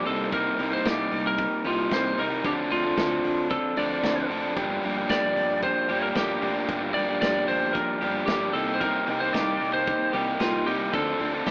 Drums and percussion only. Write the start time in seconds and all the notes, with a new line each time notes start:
0.06 open hi-hat
0.32 kick, hi-hat pedal, ride
0.59 open hi-hat
0.86 kick, snare, hi-hat pedal, ride
1.12 open hi-hat
1.38 kick, hi-hat pedal, ride
1.65 open hi-hat
1.91 kick, snare, hi-hat pedal, ride
2.18 open hi-hat
2.44 kick, hi-hat pedal, ride
2.71 open hi-hat
2.97 kick, snare, hi-hat pedal, ride
3.24 open hi-hat
3.50 kick, hi-hat pedal, ride
3.77 open hi-hat
4.03 kick, snare, hi-hat pedal, ride
4.31 open hi-hat
4.57 kick, hi-hat pedal, ride
4.83 open hi-hat
5.10 kick, snare, hi-hat pedal, ride
5.36 open hi-hat
5.62 kick, hi-hat pedal, ride
5.89 open hi-hat
6.15 kick, snare, hi-hat pedal, ride
6.42 open hi-hat
6.69 kick, hi-hat pedal, ride
6.95 open hi-hat
7.22 kick, snare, hi-hat pedal, ride
7.49 open hi-hat
7.75 kick, hi-hat pedal, ride
8.01 open hi-hat
8.27 kick, snare, hi-hat pedal, ride
8.55 open hi-hat
8.81 kick, hi-hat pedal, ride
9.07 open hi-hat
9.34 kick, snare, hi-hat pedal, ride
9.61 open hi-hat
9.87 kick, hi-hat pedal, ride
10.13 open hi-hat
10.40 kick, snare, hi-hat pedal, ride
10.67 open hi-hat
10.93 kick, hi-hat pedal, ride
11.20 open hi-hat
11.46 kick, snare, hi-hat pedal, ride